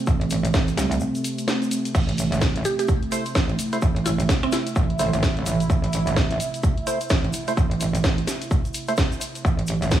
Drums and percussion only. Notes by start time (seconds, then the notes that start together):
0.07 kick, shaker
0.21 closed hi-hat
0.30 open hi-hat, shaker
0.45 closed hi-hat, shaker
0.54 kick, snare, shaker
0.68 closed hi-hat, shaker
0.77 snare, open hi-hat, shaker
0.92 closed hi-hat, shaker
1.00 shaker
1.15 closed hi-hat, shaker
1.24 open hi-hat, shaker
1.38 closed hi-hat, shaker
1.48 snare, open hi-hat, shaker
1.62 closed hi-hat, shaker
1.71 open hi-hat, shaker
1.85 closed hi-hat, shaker
1.95 kick, crash, shaker
2.09 closed hi-hat
2.18 open hi-hat, shaker
2.32 closed hi-hat, shaker
2.41 kick, snare, shaker
2.56 closed hi-hat
2.65 open hi-hat, shaker
2.79 closed hi-hat, shaker
2.88 kick, shaker
3.03 closed hi-hat
3.12 open hi-hat, shaker
3.26 closed hi-hat, shaker
3.35 kick, snare, shaker
3.49 closed hi-hat
3.59 open hi-hat, shaker
3.73 open hi-hat, shaker
3.82 kick, shaker
3.96 closed hi-hat
4.06 open hi-hat, shaker
4.19 closed hi-hat, shaker
4.29 kick, snare, shaker
4.43 closed hi-hat
4.52 snare, open hi-hat, shaker
4.67 closed hi-hat, shaker
4.76 kick, shaker
4.90 closed hi-hat
4.99 open hi-hat, shaker
5.13 closed hi-hat, shaker
5.23 kick, snare, open hi-hat, shaker
5.37 closed hi-hat
5.46 open hi-hat, shaker
5.60 closed hi-hat, shaker
5.70 kick, shaker
5.84 closed hi-hat
5.93 open hi-hat, shaker
6.07 closed hi-hat, shaker
6.16 kick, snare, shaker
6.31 closed hi-hat
6.40 open hi-hat, shaker
6.54 closed hi-hat, shaker
6.63 kick, shaker
6.78 closed hi-hat
6.87 open hi-hat, shaker
7.01 closed hi-hat, shaker
7.10 kick, snare, shaker
7.24 closed hi-hat
7.33 open hi-hat, shaker
7.48 open hi-hat, shaker
7.57 kick, shaker
7.71 closed hi-hat
7.81 open hi-hat, shaker
7.95 closed hi-hat, shaker
8.04 kick, snare, shaker
8.18 closed hi-hat
8.27 snare, open hi-hat, shaker
8.42 closed hi-hat, shaker
8.51 kick, shaker
8.65 closed hi-hat, shaker
8.74 open hi-hat, shaker
8.88 closed hi-hat, shaker
8.97 kick, snare, open hi-hat, shaker
9.12 closed hi-hat, shaker
9.21 open hi-hat, shaker
9.35 closed hi-hat, shaker
9.45 kick, shaker
9.59 closed hi-hat
9.67 open hi-hat, shaker
9.82 closed hi-hat, shaker
9.91 kick, snare, shaker